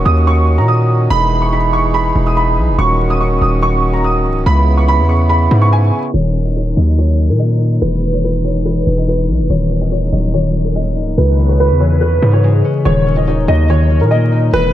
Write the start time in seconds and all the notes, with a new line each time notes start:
Already playing: D#3 C#4 F#4
0.05 D#2 D#6
0.27 C#6
0.58 A#2 A#5
0.68 D#6
1.10 E1 E3 D#4 G#4 B5
1.42 C#6
1.53 B5
1.73 C#6
1.94 B5
2.16 E1
2.27 D#6
2.37 B5
2.57 B1
2.68 E1
2.78 D#1 D#3 C#4 F#4 C#6
3.10 D#6
3.21 C#6
3.41 D#1 D#6
3.63 C#6
3.93 A#5
4.04 D#6
4.25 C#1
4.46 C#2 C#3 B3 E4 B5
4.78 C#6
4.88 B5
4.99 E2
5.09 C#6
5.29 B5
5.51 G#2
5.62 C#6
5.73 G#5
6.14 D#1 D#3 C#5
6.35 C#4
6.45 D#5
6.56 D#4 C#5
6.77 D#2 F#3 D#5
6.98 D#3 C#5
7.19 C#4
7.29 A#2 A#4
7.39 A#3 D#5
7.60 D#4
7.81 E1 E3 B4
8.03 D#4
8.13 C#5
8.24 E4 B4
8.45 G#3 C#5
8.65 E3 B4
8.87 E1 D#4
8.98 D#5
9.07 B3 B4
9.29 B1 E4
9.39 E1
9.50 D#1 D#3 C#5
9.71 C#4
9.81 D#5
9.92 D#4 C#5
10.13 D#1 F#3 D#5
10.34 D#3 C#5
10.55 C#4
10.65 A#4
10.75 A#3 D#5
10.97 C#1 D#4
11.17 C#2 C#3 B4
11.39 B3
11.49 C#5
11.59 C#4 B4
11.70 E2
11.80 E3 C#5
12.01 C#3 B4
12.22 G#2 B3
12.33 C#5
12.44 G#3 G#4
12.64 C#4
12.85 D#1 D#3 C#5
13.07 C#4
13.17 D#5
13.28 D#4 C#5
13.48 D#2 F#3 D#5
13.70 D#3 C#5
13.90 C#4
14.01 A#2 A#4
14.11 A#3 D#5
14.32 D#4
14.53 E1 E3 B4